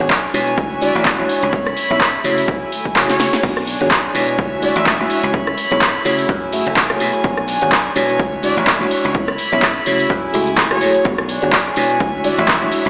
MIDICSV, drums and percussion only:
0, 0, Header, 1, 2, 480
1, 0, Start_track
1, 0, Tempo, 476190
1, 1541, Time_signature, 4, 2, 24, 8
1, 12999, End_track
2, 0, Start_track
2, 0, Title_t, "Drums"
2, 5, Note_on_c, 9, 82, 35
2, 100, Note_on_c, 9, 36, 112
2, 103, Note_on_c, 9, 42, 67
2, 104, Note_on_c, 9, 39, 116
2, 106, Note_off_c, 9, 82, 0
2, 201, Note_off_c, 9, 36, 0
2, 204, Note_off_c, 9, 42, 0
2, 205, Note_off_c, 9, 39, 0
2, 343, Note_on_c, 9, 46, 100
2, 343, Note_on_c, 9, 82, 86
2, 444, Note_off_c, 9, 46, 0
2, 444, Note_off_c, 9, 82, 0
2, 478, Note_on_c, 9, 42, 54
2, 478, Note_on_c, 9, 82, 36
2, 579, Note_off_c, 9, 42, 0
2, 579, Note_off_c, 9, 82, 0
2, 581, Note_on_c, 9, 36, 116
2, 583, Note_on_c, 9, 42, 67
2, 591, Note_on_c, 9, 82, 52
2, 681, Note_off_c, 9, 36, 0
2, 684, Note_off_c, 9, 42, 0
2, 692, Note_off_c, 9, 82, 0
2, 719, Note_on_c, 9, 82, 37
2, 820, Note_off_c, 9, 82, 0
2, 822, Note_on_c, 9, 46, 99
2, 830, Note_on_c, 9, 82, 80
2, 923, Note_off_c, 9, 46, 0
2, 930, Note_off_c, 9, 82, 0
2, 957, Note_on_c, 9, 42, 54
2, 962, Note_on_c, 9, 82, 39
2, 1058, Note_off_c, 9, 42, 0
2, 1060, Note_on_c, 9, 36, 114
2, 1061, Note_on_c, 9, 42, 66
2, 1062, Note_on_c, 9, 39, 114
2, 1063, Note_off_c, 9, 82, 0
2, 1161, Note_off_c, 9, 36, 0
2, 1162, Note_off_c, 9, 42, 0
2, 1163, Note_off_c, 9, 39, 0
2, 1302, Note_on_c, 9, 46, 99
2, 1311, Note_on_c, 9, 82, 79
2, 1403, Note_off_c, 9, 46, 0
2, 1412, Note_off_c, 9, 82, 0
2, 1438, Note_on_c, 9, 42, 62
2, 1440, Note_on_c, 9, 82, 39
2, 1539, Note_off_c, 9, 42, 0
2, 1540, Note_off_c, 9, 82, 0
2, 1540, Note_on_c, 9, 36, 112
2, 1542, Note_on_c, 9, 82, 51
2, 1543, Note_on_c, 9, 42, 67
2, 1641, Note_off_c, 9, 36, 0
2, 1643, Note_off_c, 9, 42, 0
2, 1643, Note_off_c, 9, 82, 0
2, 1678, Note_on_c, 9, 37, 58
2, 1682, Note_on_c, 9, 82, 35
2, 1779, Note_off_c, 9, 37, 0
2, 1781, Note_on_c, 9, 46, 102
2, 1783, Note_off_c, 9, 82, 0
2, 1785, Note_on_c, 9, 82, 90
2, 1882, Note_off_c, 9, 46, 0
2, 1886, Note_off_c, 9, 82, 0
2, 1917, Note_on_c, 9, 82, 39
2, 1919, Note_on_c, 9, 42, 55
2, 2018, Note_off_c, 9, 82, 0
2, 2019, Note_off_c, 9, 42, 0
2, 2020, Note_on_c, 9, 36, 113
2, 2023, Note_on_c, 9, 42, 68
2, 2024, Note_on_c, 9, 39, 119
2, 2121, Note_off_c, 9, 36, 0
2, 2124, Note_off_c, 9, 42, 0
2, 2125, Note_off_c, 9, 39, 0
2, 2259, Note_on_c, 9, 82, 93
2, 2262, Note_on_c, 9, 46, 97
2, 2360, Note_off_c, 9, 82, 0
2, 2363, Note_off_c, 9, 46, 0
2, 2399, Note_on_c, 9, 46, 61
2, 2499, Note_off_c, 9, 46, 0
2, 2501, Note_on_c, 9, 36, 120
2, 2504, Note_on_c, 9, 82, 48
2, 2505, Note_on_c, 9, 42, 70
2, 2601, Note_off_c, 9, 36, 0
2, 2604, Note_off_c, 9, 82, 0
2, 2606, Note_off_c, 9, 42, 0
2, 2631, Note_on_c, 9, 82, 37
2, 2732, Note_off_c, 9, 82, 0
2, 2743, Note_on_c, 9, 46, 100
2, 2744, Note_on_c, 9, 82, 79
2, 2844, Note_off_c, 9, 46, 0
2, 2844, Note_off_c, 9, 82, 0
2, 2876, Note_on_c, 9, 36, 58
2, 2886, Note_on_c, 9, 82, 35
2, 2977, Note_off_c, 9, 36, 0
2, 2981, Note_on_c, 9, 36, 121
2, 2984, Note_on_c, 9, 42, 70
2, 2985, Note_on_c, 9, 39, 118
2, 2986, Note_off_c, 9, 82, 0
2, 3082, Note_off_c, 9, 36, 0
2, 3085, Note_off_c, 9, 42, 0
2, 3086, Note_off_c, 9, 39, 0
2, 3120, Note_on_c, 9, 38, 54
2, 3219, Note_on_c, 9, 82, 92
2, 3220, Note_off_c, 9, 38, 0
2, 3222, Note_on_c, 9, 38, 78
2, 3222, Note_on_c, 9, 46, 99
2, 3320, Note_off_c, 9, 82, 0
2, 3323, Note_off_c, 9, 38, 0
2, 3323, Note_off_c, 9, 46, 0
2, 3359, Note_on_c, 9, 38, 79
2, 3359, Note_on_c, 9, 42, 66
2, 3460, Note_off_c, 9, 38, 0
2, 3460, Note_off_c, 9, 42, 0
2, 3461, Note_on_c, 9, 36, 120
2, 3463, Note_on_c, 9, 42, 70
2, 3463, Note_on_c, 9, 49, 105
2, 3464, Note_on_c, 9, 69, 34
2, 3562, Note_off_c, 9, 36, 0
2, 3564, Note_off_c, 9, 42, 0
2, 3564, Note_off_c, 9, 49, 0
2, 3565, Note_off_c, 9, 69, 0
2, 3597, Note_on_c, 9, 37, 57
2, 3698, Note_off_c, 9, 37, 0
2, 3701, Note_on_c, 9, 46, 107
2, 3702, Note_on_c, 9, 69, 80
2, 3802, Note_off_c, 9, 46, 0
2, 3803, Note_off_c, 9, 69, 0
2, 3836, Note_on_c, 9, 42, 55
2, 3837, Note_on_c, 9, 69, 43
2, 3937, Note_off_c, 9, 42, 0
2, 3937, Note_off_c, 9, 69, 0
2, 3940, Note_on_c, 9, 42, 69
2, 3941, Note_on_c, 9, 36, 117
2, 3941, Note_on_c, 9, 39, 123
2, 3941, Note_on_c, 9, 69, 34
2, 4041, Note_off_c, 9, 42, 0
2, 4041, Note_off_c, 9, 69, 0
2, 4042, Note_off_c, 9, 36, 0
2, 4042, Note_off_c, 9, 39, 0
2, 4181, Note_on_c, 9, 46, 108
2, 4181, Note_on_c, 9, 69, 79
2, 4282, Note_off_c, 9, 46, 0
2, 4282, Note_off_c, 9, 69, 0
2, 4316, Note_on_c, 9, 42, 56
2, 4316, Note_on_c, 9, 69, 45
2, 4416, Note_off_c, 9, 42, 0
2, 4417, Note_off_c, 9, 69, 0
2, 4419, Note_on_c, 9, 42, 69
2, 4420, Note_on_c, 9, 69, 34
2, 4421, Note_on_c, 9, 36, 124
2, 4520, Note_off_c, 9, 42, 0
2, 4520, Note_off_c, 9, 69, 0
2, 4522, Note_off_c, 9, 36, 0
2, 4660, Note_on_c, 9, 46, 107
2, 4661, Note_on_c, 9, 69, 80
2, 4761, Note_off_c, 9, 46, 0
2, 4762, Note_off_c, 9, 69, 0
2, 4797, Note_on_c, 9, 42, 56
2, 4797, Note_on_c, 9, 69, 44
2, 4898, Note_off_c, 9, 42, 0
2, 4898, Note_off_c, 9, 69, 0
2, 4901, Note_on_c, 9, 36, 124
2, 4903, Note_on_c, 9, 42, 70
2, 4903, Note_on_c, 9, 69, 33
2, 4904, Note_on_c, 9, 39, 121
2, 5002, Note_off_c, 9, 36, 0
2, 5004, Note_off_c, 9, 42, 0
2, 5004, Note_off_c, 9, 69, 0
2, 5005, Note_off_c, 9, 39, 0
2, 5141, Note_on_c, 9, 46, 107
2, 5141, Note_on_c, 9, 69, 82
2, 5241, Note_off_c, 9, 46, 0
2, 5242, Note_off_c, 9, 69, 0
2, 5276, Note_on_c, 9, 42, 66
2, 5277, Note_on_c, 9, 69, 47
2, 5377, Note_off_c, 9, 42, 0
2, 5378, Note_off_c, 9, 69, 0
2, 5380, Note_on_c, 9, 42, 68
2, 5380, Note_on_c, 9, 69, 32
2, 5381, Note_on_c, 9, 36, 123
2, 5481, Note_off_c, 9, 36, 0
2, 5481, Note_off_c, 9, 42, 0
2, 5481, Note_off_c, 9, 69, 0
2, 5516, Note_on_c, 9, 37, 61
2, 5617, Note_off_c, 9, 37, 0
2, 5619, Note_on_c, 9, 46, 112
2, 5620, Note_on_c, 9, 69, 74
2, 5720, Note_off_c, 9, 46, 0
2, 5721, Note_off_c, 9, 69, 0
2, 5755, Note_on_c, 9, 42, 53
2, 5755, Note_on_c, 9, 69, 44
2, 5856, Note_off_c, 9, 42, 0
2, 5856, Note_off_c, 9, 69, 0
2, 5860, Note_on_c, 9, 36, 121
2, 5860, Note_on_c, 9, 42, 67
2, 5860, Note_on_c, 9, 69, 33
2, 5861, Note_on_c, 9, 39, 127
2, 5961, Note_off_c, 9, 36, 0
2, 5961, Note_off_c, 9, 42, 0
2, 5961, Note_off_c, 9, 69, 0
2, 5962, Note_off_c, 9, 39, 0
2, 6099, Note_on_c, 9, 46, 110
2, 6099, Note_on_c, 9, 69, 74
2, 6200, Note_off_c, 9, 46, 0
2, 6200, Note_off_c, 9, 69, 0
2, 6234, Note_on_c, 9, 46, 65
2, 6235, Note_on_c, 9, 69, 44
2, 6335, Note_off_c, 9, 46, 0
2, 6336, Note_off_c, 9, 69, 0
2, 6340, Note_on_c, 9, 36, 127
2, 6340, Note_on_c, 9, 69, 33
2, 6440, Note_off_c, 9, 36, 0
2, 6441, Note_off_c, 9, 69, 0
2, 6578, Note_on_c, 9, 46, 113
2, 6578, Note_on_c, 9, 69, 76
2, 6678, Note_off_c, 9, 46, 0
2, 6679, Note_off_c, 9, 69, 0
2, 6714, Note_on_c, 9, 42, 55
2, 6714, Note_on_c, 9, 69, 45
2, 6814, Note_off_c, 9, 42, 0
2, 6815, Note_off_c, 9, 69, 0
2, 6818, Note_on_c, 9, 42, 67
2, 6819, Note_on_c, 9, 39, 125
2, 6819, Note_on_c, 9, 69, 33
2, 6820, Note_on_c, 9, 36, 124
2, 6919, Note_off_c, 9, 42, 0
2, 6920, Note_off_c, 9, 36, 0
2, 6920, Note_off_c, 9, 39, 0
2, 6920, Note_off_c, 9, 69, 0
2, 6954, Note_on_c, 9, 37, 68
2, 7055, Note_off_c, 9, 37, 0
2, 7057, Note_on_c, 9, 46, 113
2, 7058, Note_on_c, 9, 69, 77
2, 7158, Note_off_c, 9, 46, 0
2, 7158, Note_off_c, 9, 69, 0
2, 7192, Note_on_c, 9, 42, 65
2, 7192, Note_on_c, 9, 69, 44
2, 7293, Note_off_c, 9, 42, 0
2, 7293, Note_off_c, 9, 69, 0
2, 7298, Note_on_c, 9, 42, 64
2, 7299, Note_on_c, 9, 36, 124
2, 7299, Note_on_c, 9, 69, 32
2, 7399, Note_off_c, 9, 42, 0
2, 7399, Note_off_c, 9, 69, 0
2, 7400, Note_off_c, 9, 36, 0
2, 7434, Note_on_c, 9, 37, 63
2, 7534, Note_off_c, 9, 37, 0
2, 7539, Note_on_c, 9, 46, 113
2, 7539, Note_on_c, 9, 69, 76
2, 7639, Note_off_c, 9, 46, 0
2, 7640, Note_off_c, 9, 69, 0
2, 7675, Note_on_c, 9, 42, 52
2, 7676, Note_on_c, 9, 69, 43
2, 7776, Note_off_c, 9, 42, 0
2, 7776, Note_off_c, 9, 69, 0
2, 7780, Note_on_c, 9, 36, 127
2, 7781, Note_on_c, 9, 42, 65
2, 7781, Note_on_c, 9, 69, 32
2, 7782, Note_on_c, 9, 39, 126
2, 7881, Note_off_c, 9, 36, 0
2, 7882, Note_off_c, 9, 42, 0
2, 7882, Note_off_c, 9, 69, 0
2, 7883, Note_off_c, 9, 39, 0
2, 8021, Note_on_c, 9, 46, 109
2, 8021, Note_on_c, 9, 69, 74
2, 8121, Note_off_c, 9, 46, 0
2, 8122, Note_off_c, 9, 69, 0
2, 8156, Note_on_c, 9, 42, 54
2, 8156, Note_on_c, 9, 69, 43
2, 8256, Note_off_c, 9, 42, 0
2, 8257, Note_off_c, 9, 69, 0
2, 8260, Note_on_c, 9, 36, 127
2, 8260, Note_on_c, 9, 42, 65
2, 8260, Note_on_c, 9, 69, 33
2, 8361, Note_off_c, 9, 36, 0
2, 8361, Note_off_c, 9, 42, 0
2, 8361, Note_off_c, 9, 69, 0
2, 8499, Note_on_c, 9, 46, 109
2, 8499, Note_on_c, 9, 69, 77
2, 8600, Note_off_c, 9, 46, 0
2, 8600, Note_off_c, 9, 69, 0
2, 8636, Note_on_c, 9, 42, 51
2, 8636, Note_on_c, 9, 69, 42
2, 8737, Note_off_c, 9, 42, 0
2, 8737, Note_off_c, 9, 69, 0
2, 8740, Note_on_c, 9, 36, 127
2, 8741, Note_on_c, 9, 42, 66
2, 8741, Note_on_c, 9, 69, 33
2, 8742, Note_on_c, 9, 39, 124
2, 8841, Note_off_c, 9, 36, 0
2, 8842, Note_off_c, 9, 39, 0
2, 8842, Note_off_c, 9, 42, 0
2, 8842, Note_off_c, 9, 69, 0
2, 8980, Note_on_c, 9, 46, 116
2, 8981, Note_on_c, 9, 69, 74
2, 9081, Note_off_c, 9, 46, 0
2, 9082, Note_off_c, 9, 69, 0
2, 9114, Note_on_c, 9, 42, 63
2, 9115, Note_on_c, 9, 69, 44
2, 9215, Note_off_c, 9, 42, 0
2, 9216, Note_off_c, 9, 69, 0
2, 9219, Note_on_c, 9, 42, 63
2, 9219, Note_on_c, 9, 69, 33
2, 9220, Note_on_c, 9, 36, 126
2, 9319, Note_off_c, 9, 42, 0
2, 9320, Note_off_c, 9, 69, 0
2, 9321, Note_off_c, 9, 36, 0
2, 9355, Note_on_c, 9, 37, 66
2, 9456, Note_off_c, 9, 37, 0
2, 9459, Note_on_c, 9, 46, 113
2, 9459, Note_on_c, 9, 69, 78
2, 9559, Note_off_c, 9, 46, 0
2, 9560, Note_off_c, 9, 69, 0
2, 9593, Note_on_c, 9, 42, 50
2, 9594, Note_on_c, 9, 69, 43
2, 9694, Note_off_c, 9, 42, 0
2, 9695, Note_off_c, 9, 69, 0
2, 9699, Note_on_c, 9, 42, 64
2, 9700, Note_on_c, 9, 36, 123
2, 9700, Note_on_c, 9, 39, 119
2, 9700, Note_on_c, 9, 69, 33
2, 9800, Note_off_c, 9, 42, 0
2, 9801, Note_off_c, 9, 36, 0
2, 9801, Note_off_c, 9, 39, 0
2, 9801, Note_off_c, 9, 69, 0
2, 9938, Note_on_c, 9, 46, 110
2, 9939, Note_on_c, 9, 69, 73
2, 10039, Note_off_c, 9, 46, 0
2, 10040, Note_off_c, 9, 69, 0
2, 10075, Note_on_c, 9, 46, 68
2, 10076, Note_on_c, 9, 69, 44
2, 10176, Note_off_c, 9, 46, 0
2, 10177, Note_off_c, 9, 69, 0
2, 10179, Note_on_c, 9, 42, 63
2, 10180, Note_on_c, 9, 36, 127
2, 10180, Note_on_c, 9, 69, 33
2, 10280, Note_off_c, 9, 42, 0
2, 10281, Note_off_c, 9, 36, 0
2, 10281, Note_off_c, 9, 69, 0
2, 10419, Note_on_c, 9, 46, 107
2, 10420, Note_on_c, 9, 69, 77
2, 10520, Note_off_c, 9, 46, 0
2, 10521, Note_off_c, 9, 69, 0
2, 10557, Note_on_c, 9, 42, 51
2, 10557, Note_on_c, 9, 69, 44
2, 10657, Note_off_c, 9, 42, 0
2, 10658, Note_off_c, 9, 69, 0
2, 10660, Note_on_c, 9, 36, 124
2, 10660, Note_on_c, 9, 42, 62
2, 10660, Note_on_c, 9, 69, 33
2, 10661, Note_on_c, 9, 39, 115
2, 10761, Note_off_c, 9, 36, 0
2, 10761, Note_off_c, 9, 42, 0
2, 10761, Note_off_c, 9, 69, 0
2, 10762, Note_off_c, 9, 39, 0
2, 10794, Note_on_c, 9, 37, 72
2, 10895, Note_off_c, 9, 37, 0
2, 10897, Note_on_c, 9, 46, 112
2, 10898, Note_on_c, 9, 69, 78
2, 10998, Note_off_c, 9, 46, 0
2, 10998, Note_off_c, 9, 69, 0
2, 11033, Note_on_c, 9, 42, 61
2, 11033, Note_on_c, 9, 69, 45
2, 11134, Note_off_c, 9, 42, 0
2, 11134, Note_off_c, 9, 69, 0
2, 11138, Note_on_c, 9, 42, 63
2, 11139, Note_on_c, 9, 69, 34
2, 11140, Note_on_c, 9, 36, 121
2, 11239, Note_off_c, 9, 42, 0
2, 11239, Note_off_c, 9, 69, 0
2, 11241, Note_off_c, 9, 36, 0
2, 11273, Note_on_c, 9, 37, 64
2, 11374, Note_off_c, 9, 37, 0
2, 11377, Note_on_c, 9, 46, 109
2, 11378, Note_on_c, 9, 69, 79
2, 11478, Note_off_c, 9, 46, 0
2, 11479, Note_off_c, 9, 69, 0
2, 11512, Note_on_c, 9, 42, 50
2, 11513, Note_on_c, 9, 69, 45
2, 11613, Note_off_c, 9, 42, 0
2, 11614, Note_off_c, 9, 69, 0
2, 11617, Note_on_c, 9, 42, 63
2, 11618, Note_on_c, 9, 39, 115
2, 11618, Note_on_c, 9, 69, 34
2, 11620, Note_on_c, 9, 36, 120
2, 11718, Note_off_c, 9, 42, 0
2, 11718, Note_off_c, 9, 69, 0
2, 11719, Note_off_c, 9, 39, 0
2, 11721, Note_off_c, 9, 36, 0
2, 11856, Note_on_c, 9, 46, 106
2, 11857, Note_on_c, 9, 69, 78
2, 11957, Note_off_c, 9, 46, 0
2, 11957, Note_off_c, 9, 69, 0
2, 11993, Note_on_c, 9, 42, 51
2, 11994, Note_on_c, 9, 69, 47
2, 12094, Note_off_c, 9, 42, 0
2, 12094, Note_off_c, 9, 69, 0
2, 12099, Note_on_c, 9, 42, 62
2, 12099, Note_on_c, 9, 69, 34
2, 12100, Note_on_c, 9, 36, 127
2, 12200, Note_off_c, 9, 36, 0
2, 12200, Note_off_c, 9, 42, 0
2, 12200, Note_off_c, 9, 69, 0
2, 12338, Note_on_c, 9, 46, 105
2, 12339, Note_on_c, 9, 69, 82
2, 12439, Note_off_c, 9, 46, 0
2, 12440, Note_off_c, 9, 69, 0
2, 12475, Note_on_c, 9, 42, 51
2, 12475, Note_on_c, 9, 69, 46
2, 12575, Note_off_c, 9, 42, 0
2, 12576, Note_off_c, 9, 69, 0
2, 12580, Note_on_c, 9, 36, 123
2, 12581, Note_on_c, 9, 42, 64
2, 12581, Note_on_c, 9, 69, 33
2, 12582, Note_on_c, 9, 39, 118
2, 12681, Note_off_c, 9, 36, 0
2, 12682, Note_off_c, 9, 39, 0
2, 12682, Note_off_c, 9, 42, 0
2, 12682, Note_off_c, 9, 69, 0
2, 12818, Note_on_c, 9, 46, 107
2, 12819, Note_on_c, 9, 69, 83
2, 12919, Note_off_c, 9, 46, 0
2, 12920, Note_off_c, 9, 69, 0
2, 12954, Note_on_c, 9, 42, 61
2, 12954, Note_on_c, 9, 69, 47
2, 12999, Note_off_c, 9, 42, 0
2, 12999, Note_off_c, 9, 69, 0
2, 12999, End_track
0, 0, End_of_file